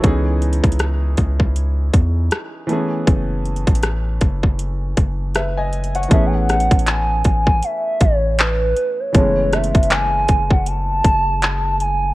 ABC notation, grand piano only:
X:1
M:4/4
L:1/16
Q:"Swing 16ths" 1/4=79
K:F#dor
V:1 name="Grand piano"
[EA] z12 z3 | z12 [Be] [dg]2 [cf]- | [cf] z12 z3 | z16 |]
V:2 name="Grand piano"
[E,B,CDG]12- [E,B,CDG]2 [E,A,B,CG]2- | [E,A,B,CG]12- [E,A,B,CG]2 z2 | [E,A,B,CG]16 | [E,G,A,B,C]16 |]